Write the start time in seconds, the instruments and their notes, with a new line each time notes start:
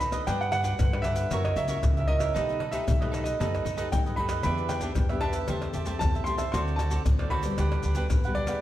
Already playing: upright bass D#2, nylon-string guitar D#3 A3 B3 F#4
0.00 cavaquinho D#4 A4 B4 D#5, grand piano B5, pandeiro, maracas
0.12 nylon-string guitar D4 F#4 B4, cavaquinho A4 B4 D#5, pandeiro, tamborim, maracas, surdo
0.27 upright bass G2, nylon-string guitar G3, cavaquinho D4 G4 B4 F#5, grand piano G5, pandeiro, tamborim, maracas, surdo
0.41 grand piano F#5, pandeiro, maracas
0.52 cavaquinho D4 G4 B4 F#5, grand piano F#5, pandeiro, tamborim, maracas
0.63 cavaquinho D4 G4 B4 F#5, nylon-string guitar D4 F#4 B4, pandeiro, maracas, surdo
0.79 upright bass G2, nylon-string guitar D3, pandeiro, tamborim, maracas, surdo
0.93 nylon-string guitar D4 F#4 B4, cavaquinho G4 B4 F#5, pandeiro, tamborim, maracas
1.02 cavaquinho D4 G4 B4 F#5, grand piano E5, pandeiro, tamborim, maracas
1.16 cavaquinho G4 B4 F#5, pandeiro, maracas
1.31 upright bass F#2, nylon-string guitar F#3 C#4 E4 A#4, cavaquinho F#4 A#4 C#5 E5, pandeiro, tamborim, maracas, surdo
1.44 grand piano D#5, pandeiro, tamborim, maracas, surdo
1.56 upright bass C#2, cavaquinho F#4 A#4 C#5 E5, grand piano E5, pandeiro, maracas
1.68 nylon-string guitar C#4 E4 A#4, cavaquinho F#4 A#4 C#5 E5, pandeiro, maracas, surdo
1.83 upright bass C#2, nylon-string guitar C#3, pandeiro, tamborim, maracas, surdo
1.97 cavaquinho A#4 C#5 E5, grand piano E5, pandeiro, maracas
2.08 nylon-string guitar C#4 E4 A#4, cavaquinho F#4 A#4 C#5 E5, grand piano D#5, pandeiro
2.19 cavaquinho A#4 C#5 E5, pandeiro, tamborim, maracas, surdo
2.34 upright bass B1, nylon-string guitar B2 A3 D#4 G4, cavaquinho D#4 A4 B4 D#5, pandeiro, tamborim, maracas, surdo
2.49 pandeiro, maracas
2.59 cavaquinho D#4 A4 B4 D#5, pandeiro, tamborim
2.72 nylon-string guitar A3 D#4 G4, cavaquinho D#4 A4 B4 D#5, grand piano E5, pandeiro, maracas, surdo
2.88 upright bass B1, pandeiro, tamborim, maracas, surdo
3.01 nylon-string guitar A3 D#4 G4, cavaquinho A4 B4 D#5, pandeiro, tamborim, maracas
3.11 cavaquinho D#4 A4 B4 D#5, pandeiro, tamborim, maracas
3.24 cavaquinho A4 B4 D#5, grand piano D#5, pandeiro, maracas
3.39 upright bass F#2, nylon-string guitar B2 A3 D#4 G4, cavaquinho D#4 A4 B4 D#5, pandeiro, tamborim, maracas, surdo
3.55 pandeiro, tamborim, maracas, surdo
3.65 upright bass F#2, cavaquinho D#4 A4 B4 D#5, pandeiro, maracas
3.77 nylon-string guitar A3 D#4 G4, cavaquinho D#4 A4 B4 D#5, pandeiro, maracas, surdo
3.92 upright bass G2, nylon-string guitar F#3, grand piano G5, pandeiro, tamborim, maracas, surdo
4.06 cavaquinho A4 B4 D#5, pandeiro, maracas
4.16 upright bass F#2, nylon-string guitar A3 D#4 G4, cavaquinho D#4 A4 B4 D#5, grand piano B5, pandeiro
4.29 cavaquinho A4 B4 D#5, pandeiro, tamborim, maracas, surdo
4.43 upright bass E2, nylon-string guitar E3 B3 D4 G4, cavaquinho D4 G4 B4 E5, grand piano B5, pandeiro, tamborim, maracas, surdo
4.58 pandeiro, maracas
4.69 cavaquinho D4 G4 B4 E5, grand piano G5, pandeiro, tamborim, maracas
4.81 nylon-string guitar B3 D4 G4, cavaquinho D4 G4 B4 E5, pandeiro, maracas, surdo
4.95 upright bass E2, nylon-string guitar B2, pandeiro, tamborim, maracas, surdo
5.09 nylon-string guitar B3 D4 G4, cavaquinho G4 B4 E5, pandeiro, tamborim, maracas
5.21 cavaquinho D4 G4 B4 E5, grand piano A5, pandeiro, tamborim, surdo
5.33 cavaquinho G4 B4 E5, pandeiro, maracas
5.48 upright bass E2, nylon-string guitar E3 A3 C4 G4, cavaquinho G4 C5 E5 A5, pandeiro, tamborim, maracas, surdo
5.62 pandeiro, tamborim, maracas, surdo
5.73 upright bass E2, cavaquinho G4 C5 E5 A5, pandeiro, maracas
5.86 nylon-string guitar A3 C4 G4, cavaquinho G4 C5 E5 A5, pandeiro, maracas, surdo
5.99 upright bass E2, nylon-string guitar E3, grand piano A5, pandeiro, tamborim, maracas, surdo
6.15 cavaquinho C5 E5 A5, pandeiro, maracas
6.24 nylon-string guitar A3 C4 G4, cavaquinho G4 C5 E5 A5, grand piano C6, pandeiro, maracas
6.38 cavaquinho C5 E5 A5, pandeiro, tamborim, maracas, surdo
6.52 upright bass D2, nylon-string guitar D3 A3 C4 F#4, cavaquinho F#4 A4 C5 D5, grand piano C6, pandeiro, tamborim, maracas, surdo
6.68 pandeiro, maracas
6.76 cavaquinho F#4 A4 C5 D5, grand piano A5, pandeiro, tamborim, maracas
6.90 nylon-string guitar A3 C4 F#4, cavaquinho F#4 A4 C5 D5, pandeiro, maracas, surdo
7.06 upright bass D2, nylon-string guitar A2, pandeiro, tamborim, maracas, surdo
7.19 nylon-string guitar A3 C4 F#4, cavaquinho A4 C5 D5, pandeiro, tamborim, maracas
7.30 cavaquinho F#4 A4 C5 D5, grand piano B5, pandeiro, tamborim, surdo
7.43 nylon-string guitar G3 B3 F#4, cavaquinho A4 C5 D5, pandeiro, maracas
7.58 upright bass D2, nylon-string guitar D3, cavaquinho D4 G4 B4 F#5, pandeiro, tamborim, maracas, surdo
7.72 pandeiro, tamborim, maracas, surdo
7.83 upright bass D2, cavaquinho D4 G4 B4 F#5, pandeiro, maracas
7.95 nylon-string guitar G3 B3 F#4, cavaquinho D4 G4 B4 F#5, pandeiro, maracas, surdo
8.10 upright bass D#2, nylon-string guitar D3, pandeiro, tamborim, maracas, surdo
8.24 nylon-string guitar G3 B3 F#4, cavaquinho G4 B4 F#5, pandeiro, maracas
8.35 cavaquinho D4 G4 B4 F#5, grand piano D5, pandeiro
8.47 nylon-string guitar B3 D4 G#4, cavaquinho G4 B4 F#5, pandeiro, tamborim, maracas, surdo